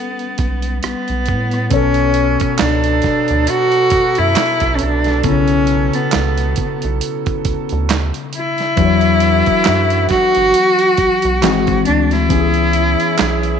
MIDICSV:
0, 0, Header, 1, 6, 480
1, 0, Start_track
1, 0, Key_signature, 2, "minor"
1, 0, Tempo, 882353
1, 934, Time_signature, 4, 2, 24, 8
1, 7397, End_track
2, 0, Start_track
2, 0, Title_t, "Cello"
2, 0, Program_c, 0, 42
2, 0, Note_on_c, 0, 59, 82
2, 439, Note_off_c, 0, 59, 0
2, 465, Note_on_c, 0, 59, 87
2, 918, Note_off_c, 0, 59, 0
2, 939, Note_on_c, 0, 61, 102
2, 1395, Note_off_c, 0, 61, 0
2, 1420, Note_on_c, 0, 62, 97
2, 1901, Note_on_c, 0, 66, 110
2, 1909, Note_off_c, 0, 62, 0
2, 2274, Note_on_c, 0, 64, 103
2, 2283, Note_off_c, 0, 66, 0
2, 2591, Note_on_c, 0, 61, 61
2, 2599, Note_off_c, 0, 64, 0
2, 2625, Note_on_c, 0, 62, 87
2, 2633, Note_off_c, 0, 61, 0
2, 2859, Note_off_c, 0, 62, 0
2, 2862, Note_on_c, 0, 61, 96
2, 3235, Note_on_c, 0, 59, 79
2, 3244, Note_off_c, 0, 61, 0
2, 3713, Note_off_c, 0, 59, 0
2, 4550, Note_on_c, 0, 64, 108
2, 5480, Note_off_c, 0, 64, 0
2, 5494, Note_on_c, 0, 66, 126
2, 6432, Note_off_c, 0, 66, 0
2, 6456, Note_on_c, 0, 62, 82
2, 6595, Note_on_c, 0, 64, 96
2, 6603, Note_off_c, 0, 62, 0
2, 7397, Note_off_c, 0, 64, 0
2, 7397, End_track
3, 0, Start_track
3, 0, Title_t, "Saxophone section"
3, 0, Program_c, 1, 65
3, 931, Note_on_c, 1, 59, 74
3, 933, Note_on_c, 1, 54, 73
3, 933, Note_on_c, 1, 69, 81
3, 4511, Note_off_c, 1, 54, 0
3, 4511, Note_off_c, 1, 59, 0
3, 4511, Note_off_c, 1, 69, 0
3, 4775, Note_on_c, 1, 59, 80
3, 4776, Note_on_c, 1, 50, 72
3, 4776, Note_on_c, 1, 66, 84
3, 5953, Note_off_c, 1, 50, 0
3, 5953, Note_off_c, 1, 59, 0
3, 5953, Note_off_c, 1, 66, 0
3, 6213, Note_on_c, 1, 68, 75
3, 6214, Note_on_c, 1, 52, 72
3, 6214, Note_on_c, 1, 60, 65
3, 6449, Note_off_c, 1, 52, 0
3, 6449, Note_off_c, 1, 60, 0
3, 6449, Note_off_c, 1, 68, 0
3, 6692, Note_on_c, 1, 52, 79
3, 6692, Note_on_c, 1, 61, 72
3, 6692, Note_on_c, 1, 68, 78
3, 7397, Note_off_c, 1, 52, 0
3, 7397, Note_off_c, 1, 61, 0
3, 7397, Note_off_c, 1, 68, 0
3, 7397, End_track
4, 0, Start_track
4, 0, Title_t, "Tine electric piano"
4, 0, Program_c, 2, 4
4, 0, Control_c, 2, 64, 127
4, 0, Note_on_c, 2, 55, 62
4, 0, Note_on_c, 2, 59, 50
4, 0, Note_on_c, 2, 61, 51
4, 0, Note_on_c, 2, 69, 67
4, 906, Note_off_c, 2, 55, 0
4, 911, Note_off_c, 2, 59, 0
4, 915, Note_off_c, 2, 61, 0
4, 922, Note_off_c, 2, 69, 0
4, 925, Note_on_c, 2, 47, 67
4, 932, Note_on_c, 2, 59, 58
4, 942, Control_c, 2, 64, 0
4, 944, Note_on_c, 2, 73, 59
4, 956, Note_on_c, 2, 69, 68
4, 1024, Control_c, 2, 64, 127
4, 2828, Note_off_c, 2, 47, 0
4, 2831, Note_off_c, 2, 59, 0
4, 2837, Note_off_c, 2, 73, 0
4, 2843, Note_off_c, 2, 69, 0
4, 2843, Note_on_c, 2, 49, 48
4, 2855, Note_on_c, 2, 59, 58
4, 2864, Note_on_c, 2, 61, 61
4, 2871, Note_off_c, 2, 49, 0
4, 2875, Note_on_c, 2, 64, 70
4, 2878, Note_on_c, 2, 49, 62
4, 4753, Note_off_c, 2, 59, 0
4, 4757, Note_off_c, 2, 61, 0
4, 4763, Note_off_c, 2, 64, 0
4, 4764, Note_off_c, 2, 49, 0
4, 4766, Note_on_c, 2, 52, 62
4, 4775, Note_on_c, 2, 54, 50
4, 4782, Control_c, 2, 64, 0
4, 4787, Note_on_c, 2, 62, 58
4, 4797, Note_on_c, 2, 66, 74
4, 4806, Note_off_c, 2, 54, 0
4, 4812, Note_on_c, 2, 54, 59
4, 4883, Control_c, 2, 64, 127
4, 6188, Note_off_c, 2, 52, 0
4, 6199, Note_off_c, 2, 62, 0
4, 6204, Note_off_c, 2, 66, 0
4, 6211, Note_off_c, 2, 54, 0
4, 6211, Note_on_c, 2, 52, 86
4, 6216, Note_on_c, 2, 56, 77
4, 6220, Note_on_c, 2, 60, 77
4, 6221, Control_c, 2, 64, 0
4, 6229, Note_on_c, 2, 66, 93
4, 6302, Control_c, 2, 64, 127
4, 6674, Note_off_c, 2, 52, 0
4, 6680, Note_on_c, 2, 52, 67
4, 6692, Note_on_c, 2, 59, 64
4, 6695, Note_off_c, 2, 56, 0
4, 6697, Note_off_c, 2, 60, 0
4, 6700, Control_c, 2, 64, 0
4, 6701, Note_off_c, 2, 66, 0
4, 6703, Note_on_c, 2, 61, 58
4, 6711, Note_on_c, 2, 67, 57
4, 6743, Note_off_c, 2, 67, 0
4, 6746, Note_on_c, 2, 68, 72
4, 6785, Control_c, 2, 64, 127
4, 7397, Note_off_c, 2, 52, 0
4, 7397, Note_off_c, 2, 59, 0
4, 7397, Note_off_c, 2, 61, 0
4, 7397, Note_off_c, 2, 68, 0
4, 7397, End_track
5, 0, Start_track
5, 0, Title_t, "Analog synth bass"
5, 0, Program_c, 3, 38
5, 215, Note_on_c, 3, 35, 98
5, 435, Note_off_c, 3, 35, 0
5, 461, Note_on_c, 3, 35, 45
5, 514, Note_off_c, 3, 35, 0
5, 595, Note_on_c, 3, 35, 80
5, 704, Note_on_c, 3, 45, 88
5, 712, Note_off_c, 3, 35, 0
5, 920, Note_off_c, 3, 45, 0
5, 935, Note_on_c, 3, 35, 102
5, 1289, Note_off_c, 3, 35, 0
5, 1420, Note_on_c, 3, 37, 98
5, 1638, Note_off_c, 3, 37, 0
5, 1797, Note_on_c, 3, 38, 86
5, 1889, Note_off_c, 3, 38, 0
5, 2134, Note_on_c, 3, 42, 47
5, 2189, Note_off_c, 3, 42, 0
5, 2279, Note_on_c, 3, 42, 88
5, 2370, Note_off_c, 3, 42, 0
5, 2516, Note_on_c, 3, 35, 83
5, 2609, Note_off_c, 3, 35, 0
5, 2624, Note_on_c, 3, 36, 81
5, 2840, Note_off_c, 3, 36, 0
5, 2856, Note_on_c, 3, 35, 106
5, 3210, Note_off_c, 3, 35, 0
5, 3345, Note_on_c, 3, 37, 97
5, 3561, Note_off_c, 3, 37, 0
5, 3722, Note_on_c, 3, 35, 86
5, 3812, Note_off_c, 3, 35, 0
5, 4058, Note_on_c, 3, 38, 45
5, 4112, Note_off_c, 3, 38, 0
5, 4200, Note_on_c, 3, 38, 87
5, 4416, Note_off_c, 3, 38, 0
5, 4778, Note_on_c, 3, 40, 96
5, 5131, Note_off_c, 3, 40, 0
5, 5265, Note_on_c, 3, 42, 93
5, 5480, Note_off_c, 3, 42, 0
5, 5639, Note_on_c, 3, 31, 79
5, 5730, Note_off_c, 3, 31, 0
5, 5977, Note_on_c, 3, 35, 49
5, 6031, Note_off_c, 3, 35, 0
5, 6118, Note_on_c, 3, 35, 93
5, 6210, Note_off_c, 3, 35, 0
5, 6222, Note_on_c, 3, 32, 107
5, 6343, Note_off_c, 3, 32, 0
5, 6358, Note_on_c, 3, 32, 90
5, 6450, Note_off_c, 3, 32, 0
5, 6465, Note_on_c, 3, 38, 95
5, 6680, Note_off_c, 3, 38, 0
5, 6698, Note_on_c, 3, 37, 107
5, 7051, Note_off_c, 3, 37, 0
5, 7185, Note_on_c, 3, 35, 92
5, 7397, Note_off_c, 3, 35, 0
5, 7397, End_track
6, 0, Start_track
6, 0, Title_t, "Drums"
6, 105, Note_on_c, 9, 42, 31
6, 159, Note_off_c, 9, 42, 0
6, 206, Note_on_c, 9, 42, 61
6, 211, Note_on_c, 9, 36, 78
6, 260, Note_off_c, 9, 42, 0
6, 266, Note_off_c, 9, 36, 0
6, 339, Note_on_c, 9, 42, 40
6, 394, Note_off_c, 9, 42, 0
6, 449, Note_on_c, 9, 42, 86
6, 456, Note_on_c, 9, 37, 97
6, 504, Note_off_c, 9, 42, 0
6, 511, Note_off_c, 9, 37, 0
6, 586, Note_on_c, 9, 42, 31
6, 640, Note_off_c, 9, 42, 0
6, 683, Note_on_c, 9, 42, 57
6, 699, Note_on_c, 9, 36, 83
6, 738, Note_off_c, 9, 42, 0
6, 754, Note_off_c, 9, 36, 0
6, 823, Note_on_c, 9, 42, 31
6, 837, Note_on_c, 9, 37, 28
6, 878, Note_off_c, 9, 42, 0
6, 891, Note_off_c, 9, 37, 0
6, 927, Note_on_c, 9, 42, 85
6, 931, Note_on_c, 9, 36, 116
6, 982, Note_off_c, 9, 42, 0
6, 986, Note_off_c, 9, 36, 0
6, 1056, Note_on_c, 9, 42, 49
6, 1111, Note_off_c, 9, 42, 0
6, 1163, Note_on_c, 9, 42, 58
6, 1218, Note_off_c, 9, 42, 0
6, 1304, Note_on_c, 9, 42, 51
6, 1312, Note_on_c, 9, 36, 89
6, 1359, Note_off_c, 9, 42, 0
6, 1366, Note_off_c, 9, 36, 0
6, 1403, Note_on_c, 9, 42, 91
6, 1407, Note_on_c, 9, 39, 94
6, 1411, Note_on_c, 9, 38, 108
6, 1457, Note_off_c, 9, 42, 0
6, 1461, Note_off_c, 9, 39, 0
6, 1465, Note_off_c, 9, 38, 0
6, 1543, Note_on_c, 9, 42, 50
6, 1598, Note_off_c, 9, 42, 0
6, 1642, Note_on_c, 9, 42, 60
6, 1655, Note_on_c, 9, 36, 78
6, 1657, Note_on_c, 9, 38, 35
6, 1696, Note_off_c, 9, 42, 0
6, 1709, Note_off_c, 9, 36, 0
6, 1711, Note_off_c, 9, 38, 0
6, 1784, Note_on_c, 9, 42, 40
6, 1838, Note_off_c, 9, 42, 0
6, 1888, Note_on_c, 9, 42, 82
6, 1942, Note_off_c, 9, 42, 0
6, 2022, Note_on_c, 9, 42, 44
6, 2076, Note_off_c, 9, 42, 0
6, 2123, Note_on_c, 9, 42, 73
6, 2130, Note_on_c, 9, 36, 95
6, 2177, Note_off_c, 9, 42, 0
6, 2185, Note_off_c, 9, 36, 0
6, 2259, Note_on_c, 9, 42, 45
6, 2313, Note_off_c, 9, 42, 0
6, 2369, Note_on_c, 9, 42, 89
6, 2372, Note_on_c, 9, 39, 96
6, 2376, Note_on_c, 9, 38, 120
6, 2423, Note_off_c, 9, 42, 0
6, 2426, Note_off_c, 9, 39, 0
6, 2430, Note_off_c, 9, 38, 0
6, 2503, Note_on_c, 9, 42, 57
6, 2511, Note_on_c, 9, 36, 83
6, 2558, Note_off_c, 9, 42, 0
6, 2565, Note_off_c, 9, 36, 0
6, 2604, Note_on_c, 9, 42, 63
6, 2658, Note_off_c, 9, 42, 0
6, 2744, Note_on_c, 9, 42, 39
6, 2757, Note_on_c, 9, 38, 34
6, 2798, Note_off_c, 9, 42, 0
6, 2812, Note_off_c, 9, 38, 0
6, 2848, Note_on_c, 9, 42, 87
6, 2852, Note_on_c, 9, 36, 101
6, 2902, Note_off_c, 9, 42, 0
6, 2906, Note_off_c, 9, 36, 0
6, 2979, Note_on_c, 9, 42, 50
6, 3033, Note_off_c, 9, 42, 0
6, 3084, Note_on_c, 9, 42, 60
6, 3139, Note_off_c, 9, 42, 0
6, 3228, Note_on_c, 9, 42, 49
6, 3283, Note_off_c, 9, 42, 0
6, 3326, Note_on_c, 9, 42, 90
6, 3330, Note_on_c, 9, 39, 93
6, 3334, Note_on_c, 9, 38, 106
6, 3380, Note_off_c, 9, 42, 0
6, 3384, Note_off_c, 9, 39, 0
6, 3389, Note_off_c, 9, 38, 0
6, 3468, Note_on_c, 9, 42, 51
6, 3522, Note_off_c, 9, 42, 0
6, 3568, Note_on_c, 9, 42, 62
6, 3578, Note_on_c, 9, 36, 86
6, 3622, Note_off_c, 9, 42, 0
6, 3632, Note_off_c, 9, 36, 0
6, 3709, Note_on_c, 9, 42, 42
6, 3764, Note_off_c, 9, 42, 0
6, 3814, Note_on_c, 9, 42, 82
6, 3869, Note_off_c, 9, 42, 0
6, 3950, Note_on_c, 9, 42, 44
6, 3954, Note_on_c, 9, 36, 83
6, 4005, Note_off_c, 9, 42, 0
6, 4008, Note_off_c, 9, 36, 0
6, 4051, Note_on_c, 9, 42, 68
6, 4054, Note_on_c, 9, 36, 98
6, 4106, Note_off_c, 9, 42, 0
6, 4109, Note_off_c, 9, 36, 0
6, 4185, Note_on_c, 9, 42, 45
6, 4239, Note_off_c, 9, 42, 0
6, 4294, Note_on_c, 9, 42, 98
6, 4297, Note_on_c, 9, 39, 102
6, 4301, Note_on_c, 9, 38, 115
6, 4349, Note_off_c, 9, 42, 0
6, 4352, Note_off_c, 9, 39, 0
6, 4356, Note_off_c, 9, 38, 0
6, 4429, Note_on_c, 9, 42, 60
6, 4484, Note_off_c, 9, 42, 0
6, 4530, Note_on_c, 9, 42, 61
6, 4584, Note_off_c, 9, 42, 0
6, 4668, Note_on_c, 9, 42, 39
6, 4681, Note_on_c, 9, 38, 33
6, 4722, Note_off_c, 9, 42, 0
6, 4735, Note_off_c, 9, 38, 0
6, 4771, Note_on_c, 9, 42, 91
6, 4774, Note_on_c, 9, 36, 121
6, 4826, Note_off_c, 9, 42, 0
6, 4828, Note_off_c, 9, 36, 0
6, 4902, Note_on_c, 9, 42, 47
6, 4956, Note_off_c, 9, 42, 0
6, 5007, Note_on_c, 9, 42, 65
6, 5061, Note_off_c, 9, 42, 0
6, 5148, Note_on_c, 9, 42, 51
6, 5154, Note_on_c, 9, 36, 81
6, 5202, Note_off_c, 9, 42, 0
6, 5208, Note_off_c, 9, 36, 0
6, 5245, Note_on_c, 9, 42, 95
6, 5249, Note_on_c, 9, 39, 91
6, 5253, Note_on_c, 9, 38, 108
6, 5300, Note_off_c, 9, 42, 0
6, 5304, Note_off_c, 9, 39, 0
6, 5308, Note_off_c, 9, 38, 0
6, 5387, Note_on_c, 9, 42, 48
6, 5442, Note_off_c, 9, 42, 0
6, 5487, Note_on_c, 9, 42, 66
6, 5498, Note_on_c, 9, 36, 84
6, 5502, Note_on_c, 9, 38, 35
6, 5542, Note_off_c, 9, 42, 0
6, 5552, Note_off_c, 9, 36, 0
6, 5557, Note_off_c, 9, 38, 0
6, 5628, Note_on_c, 9, 42, 46
6, 5683, Note_off_c, 9, 42, 0
6, 5733, Note_on_c, 9, 42, 86
6, 5788, Note_off_c, 9, 42, 0
6, 5868, Note_on_c, 9, 42, 44
6, 5922, Note_off_c, 9, 42, 0
6, 5970, Note_on_c, 9, 42, 71
6, 5974, Note_on_c, 9, 36, 91
6, 6024, Note_off_c, 9, 42, 0
6, 6028, Note_off_c, 9, 36, 0
6, 6105, Note_on_c, 9, 42, 48
6, 6159, Note_off_c, 9, 42, 0
6, 6215, Note_on_c, 9, 42, 95
6, 6218, Note_on_c, 9, 39, 94
6, 6222, Note_on_c, 9, 38, 111
6, 6270, Note_off_c, 9, 42, 0
6, 6272, Note_off_c, 9, 39, 0
6, 6276, Note_off_c, 9, 38, 0
6, 6349, Note_on_c, 9, 42, 56
6, 6354, Note_on_c, 9, 36, 87
6, 6404, Note_off_c, 9, 42, 0
6, 6408, Note_off_c, 9, 36, 0
6, 6449, Note_on_c, 9, 42, 62
6, 6503, Note_off_c, 9, 42, 0
6, 6588, Note_on_c, 9, 42, 37
6, 6602, Note_on_c, 9, 38, 35
6, 6643, Note_off_c, 9, 42, 0
6, 6656, Note_off_c, 9, 38, 0
6, 6692, Note_on_c, 9, 42, 93
6, 6693, Note_on_c, 9, 36, 119
6, 6746, Note_off_c, 9, 42, 0
6, 6748, Note_off_c, 9, 36, 0
6, 6821, Note_on_c, 9, 42, 48
6, 6875, Note_off_c, 9, 42, 0
6, 6927, Note_on_c, 9, 42, 61
6, 6981, Note_off_c, 9, 42, 0
6, 7071, Note_on_c, 9, 42, 51
6, 7125, Note_off_c, 9, 42, 0
6, 7169, Note_on_c, 9, 42, 97
6, 7173, Note_on_c, 9, 39, 89
6, 7177, Note_on_c, 9, 38, 109
6, 7223, Note_off_c, 9, 42, 0
6, 7227, Note_off_c, 9, 39, 0
6, 7231, Note_off_c, 9, 38, 0
6, 7308, Note_on_c, 9, 42, 47
6, 7362, Note_off_c, 9, 42, 0
6, 7397, End_track
0, 0, End_of_file